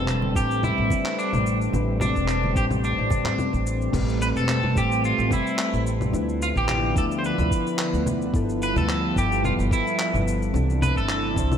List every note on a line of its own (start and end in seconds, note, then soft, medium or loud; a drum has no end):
0.00 0.31 E1 medium
0.00 0.31 G3 medium
0.00 3.89 G3 medium
0.00 3.89 A3 medium
0.00 0.32 C4 medium
0.00 3.89 C4 medium
0.00 0.33 D4 medium
0.00 0.36 A4 loud
0.00 0.34 B4 medium
0.08 clap medium
0.08 cabasa soft
0.22 high conga medium
0.34 0.73 A1 medium
0.34 0.87 G3 medium
0.34 0.87 C4 medium
0.34 0.88 D4 medium
0.34 0.62 G4 medium
0.34 0.88 C5 medium
0.34 kick medium
0.34 cabasa medium
0.51 cabasa soft
0.63 1.18 E4 medium
0.63 low conga medium
0.63 cabasa soft
0.78 0.88 A1 medium
0.88 1.69 G3 medium
0.88 1.70 C4 medium
0.88 1.70 D4 medium
0.88 kick loud
0.88 high conga medium
0.88 cabasa medium
0.93 1.71 B4 medium
1.06 clap medium
1.06 cabasa soft
1.19 1.58 D4 medium
1.19 cabasa soft
1.33 1.69 A1 medium
1.33 low conga medium
1.33 cabasa soft
1.46 cabasa medium
1.61 cabasa soft
1.71 2.11 A1 medium
1.71 2.52 G3 medium
1.71 2.52 C4 medium
1.71 2.53 D4 medium
1.71 high conga medium
1.71 cabasa soft
1.75 2.54 B4 medium
2.01 2.58 D4 medium
2.01 low conga medium
2.01 cabasa medium
2.15 2.51 E1 medium
2.15 kick medium
2.15 cabasa soft
2.28 clap medium
2.28 cabasa soft
2.44 high conga medium
2.53 2.93 A1 medium
2.53 3.89 G3 medium
2.53 3.90 C4 medium
2.53 3.91 D4 medium
2.53 2.64 G4 loud
2.53 kick medium
2.53 cabasa medium
2.58 3.91 C5 medium
2.71 low conga medium
2.71 cabasa soft
2.84 3.63 D4 medium
2.84 cabasa soft
2.98 3.34 A1 medium
3.10 kick loud
3.10 high conga medium
3.10 cabasa medium
3.25 clap medium
3.25 low conga medium
3.25 cabasa soft
3.38 low conga medium
3.38 cabasa soft
3.53 3.89 A1 medium
3.53 kick medium
3.53 cabasa soft
3.67 cabasa medium
3.81 cabasa soft
3.91 4.31 A1 loud
3.91 6.11 G3 medium
3.91 4.72 A3 medium
3.91 6.11 A3 medium
3.91 4.72 C4 medium
3.91 6.11 C4 medium
3.91 4.73 G4 medium
3.91 kick loud
3.91 crash medium
3.91 low conga medium
3.91 cabasa soft
3.95 4.74 B4 medium
4.09 cabasa soft
4.22 4.27 B4 loud
4.22 cabasa medium
4.36 4.72 E1 medium
4.36 4.78 A4 loud
4.36 cabasa soft
4.49 clap loud
4.49 cabasa soft
4.63 low conga medium
4.75 5.13 A1 medium
4.75 5.27 A3 medium
4.75 5.28 C4 medium
4.75 5.28 G4 medium
4.75 5.05 G4 medium
4.75 5.28 C5 medium
4.75 kick loud
4.75 cabasa medium
4.92 cabasa soft
5.04 5.33 F4 medium
5.04 cabasa soft
5.18 5.28 A1 medium
5.18 cabasa soft
5.29 6.09 A3 medium
5.29 6.10 C4 medium
5.29 6.11 G4 medium
5.29 kick loud
5.29 low conga medium
5.29 cabasa medium
5.33 5.83 E4 medium
5.33 6.12 B4 medium
5.47 cabasa soft
5.59 clap loud
5.59 cabasa soft
5.73 6.09 A1 medium
5.73 cabasa soft
5.87 cabasa medium
6.01 low conga medium
6.01 cabasa soft
6.11 6.51 D2 loud
6.11 8.32 D3 medium
6.11 6.92 F3 medium
6.11 8.31 F3 medium
6.11 10.50 B3 medium
6.11 6.93 D4 medium
6.11 8.32 E4 medium
6.11 6.93 E4 medium
6.11 cabasa soft
6.15 6.94 B4 medium
6.29 cabasa soft
6.42 6.48 F4 medium
6.42 cabasa medium
6.56 6.92 A1 medium
6.56 6.94 G4 loud
6.56 kick medium
6.56 cabasa soft
6.69 clap loud
6.69 low conga medium
6.69 cabasa soft
6.94 7.33 D2 medium
6.94 8.30 F3 medium
6.94 8.30 D4 medium
6.94 8.31 E4 medium
6.94 kick loud
6.94 cabasa medium
6.98 7.03 A4 medium
6.98 8.32 D5 medium
7.12 cabasa soft
7.19 7.24 C5 medium
7.24 8.03 B4 medium
7.24 cabasa soft
7.38 7.48 D2 medium
7.38 low conga medium
7.38 cabasa soft
7.51 kick loud
7.51 cabasa medium
7.67 cabasa soft
7.79 clap loud
7.79 cabasa soft
7.93 8.29 D2 medium
7.93 cabasa soft
8.06 low conga medium
8.06 cabasa medium
8.22 cabasa soft
8.32 8.71 G1 medium
8.32 9.12 F3 medium
8.32 10.52 F3 medium
8.32 10.52 G3 medium
8.32 9.13 B3 medium
8.32 9.14 E4 medium
8.32 kick loud
8.32 cabasa soft
8.36 9.14 A4 medium
8.49 cabasa soft
8.62 8.77 B4 loud
8.62 cabasa medium
8.76 9.12 D2 medium
8.76 9.18 A4 loud
8.76 low conga medium
8.76 cabasa soft
8.89 clap medium
8.89 cabasa soft
9.15 9.54 G1 medium
9.15 9.68 F3 medium
9.15 9.68 B3 medium
9.15 9.68 E4 medium
9.15 9.43 G4 medium
9.15 9.69 B4 medium
9.15 kick loud
9.15 cabasa medium
9.32 cabasa soft
9.44 9.52 F4 medium
9.44 low conga medium
9.44 cabasa soft
9.59 9.69 G1 medium
9.59 cabasa soft
9.69 10.50 F3 medium
9.69 10.51 B3 medium
9.69 10.51 E4 medium
9.69 10.23 E4 medium
9.69 kick loud
9.69 cabasa medium
9.74 10.52 A4 medium
9.87 cabasa soft
9.99 clap loud
9.99 cabasa soft
10.14 10.50 G1 medium
10.14 low conga medium
10.14 cabasa soft
10.28 cabasa medium
10.42 cabasa soft
10.52 10.91 C2 medium
10.52 11.58 C3 medium
10.52 11.32 E3 medium
10.52 11.58 A3 medium
10.52 11.33 C4 medium
10.52 11.58 D4 medium
10.52 11.34 D4 medium
10.52 11.58 E4 medium
10.52 cabasa soft
10.56 11.35 A4 medium
10.70 cabasa soft
10.82 10.97 B4 loud
10.82 low conga medium
10.82 cabasa medium
10.96 11.32 G1 medium
10.96 11.58 A4 loud
10.96 kick medium
10.96 cabasa soft
11.09 clap medium
11.09 cabasa soft
11.34 11.58 C2 medium
11.34 11.58 E3 medium
11.34 11.58 C4 medium
11.34 11.58 D4 medium
11.34 kick loud
11.34 cabasa medium
11.39 11.58 C5 medium
11.52 low conga medium
11.52 cabasa soft